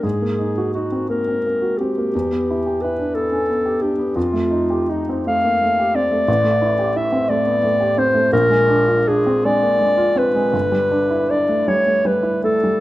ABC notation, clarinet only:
X:1
M:6/8
L:1/8
Q:3/8=57
K:Fmix
V:1 name="Clarinet"
_A2 _G B2 =G- | G2 =B A2 G | F2 E f2 d- | [K:Glyd] d2 e d2 =c |
^A2 ^G d2 B- | B2 d c B A |]